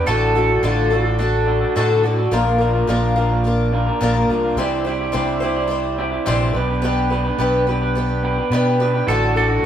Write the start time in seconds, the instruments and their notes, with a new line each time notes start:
Already playing: accordion D6
0.06 fingered electric bass A1, clean electric guitar A2 D3 D4 F#4 A4, twelve-string acoustic guitar A3, accordion A4 A5
0.34 clean electric guitar D3 D4 F#4 A4, twelve-string acoustic guitar A3
0.49 clean electric guitar D4 F#4 A4
0.63 fingered electric bass A1, clean electric guitar A2 D3 D4 F#4 A4, twelve-string acoustic guitar A3, pedal steel guitar F4
0.91 clean electric guitar D3 D4 F#4 A4, twelve-string acoustic guitar A3
1.04 clean electric guitar D4 F#4 A4
1.19 twelve-string acoustic guitar A3 D4 F#4 A4
1.46 clean electric guitar D3 D4 F#4 A4
1.61 clean electric guitar D4 F#4 A4
1.75 clean electric guitar A2 D3 D4 F#4 A4, fingered electric bass A2, twelve-string acoustic guitar A3
1.89 clean electric guitar D4 F#4 A4
2.03 clean electric guitar D3 D4 F#4 A4, twelve-string acoustic guitar A3
2.18 clean electric guitar D4 F#4 A4
2.31 fingered electric bass A#1, clean electric guitar A#2 F3 A#3 D4 F4 A#4, accordion A#4 F5
2.59 clean electric guitar A#3 D4 F4 A#4
2.73 clean electric guitar A#3 D4 F4 A#4
2.87 fingered electric bass A#1, clean electric guitar A#2 F3 A#3 D4 F4 A#4
3.16 clean electric guitar A#3 D4 F4 A#4
3.32 clean electric guitar A#3 D4 F4 A#4
3.44 twelve-string acoustic guitar A#3 D4 F4 A#4
3.72 clean electric guitar A#3 D4 F4 A#4
3.87 clean electric guitar A#3 D4 F4 A#4
4.00 fingered electric bass A#1, clean electric guitar A#2 F3 A#3 D4 F4 A#4
4.15 clean electric guitar A#3 D4 F4 A#4
4.29 fingered electric bass C2, clean electric guitar A#3 D4 F4 A#4
4.44 clean electric guitar A#3 D4 F4 A#4
4.57 fingered electric bass C2, twelve-string acoustic guitar C3 E3 G3 D4 C5, clean electric guitar C4 E4 G4 D5, accordion C5 E5
4.85 clean electric guitar C4 E4 G4 D5, twelve-string acoustic guitar D4 C5
4.89 twelve-string acoustic guitar G3
5.00 clean electric guitar E4 G4 D5
5.12 fingered electric bass C2, twelve-string acoustic guitar C3 E3 G3 D4 C5, clean electric guitar C4 E4 G4 D5
5.40 twelve-string acoustic guitar G3 D4 C5, clean electric guitar C4 E4 G4 D5
5.56 clean electric guitar E4 G4 D5
5.67 twelve-string acoustic guitar G3 D4 E4 C5
5.98 clean electric guitar C4 E4 G4 D5
6.11 clean electric guitar E4 G4 D5
6.25 fingered electric bass A#1, twelve-string acoustic guitar C3 E3 G3 D4 C5, clean electric guitar C4 E4 G4 D5
6.40 clean electric guitar E4 G4 D5
6.54 fingered electric bass B1, clean electric guitar B3 D4 G4 B4, accordion B4 G5
6.68 clean electric guitar D4 G4 B4
6.82 clean electric guitar B3 D4 G4 B4
7.10 clean electric guitar B3 D4 G4 B4
7.24 clean electric guitar D4 G4 B4
7.37 fingered electric bass B1, clean electric guitar B3 D4 G4 B4
7.67 clean electric guitar B3 D4 G4 B4
7.82 clean electric guitar D4 G4 B4
7.95 twelve-string acoustic guitar B3 D4 G4 B4
8.23 clean electric guitar B3 D4 G4 B4
8.38 clean electric guitar D4 G4 B4
8.50 fingered electric bass B2, clean electric guitar B3 D4 G4 B4
8.66 clean electric guitar D4 G4 B4
8.79 clean electric guitar B3 D4 G4 B4
8.93 clean electric guitar D4 G4 B4
9.06 fingered electric bass A1, clean electric guitar A2 D3 D4 F#4 A4, twelve-string acoustic guitar A3, accordion A4 F#5 D6
9.35 clean electric guitar D3 D4 F#4 A4
9.40 twelve-string acoustic guitar A3
9.48 clean electric guitar D4 F#4 A4
9.62 clean electric guitar A2